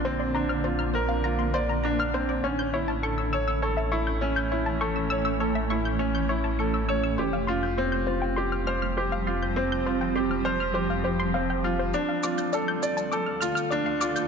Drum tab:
SH |----------------|----------------|----------------|----------------|

SH |----------------|x-xxx-xxx-xxx-xx|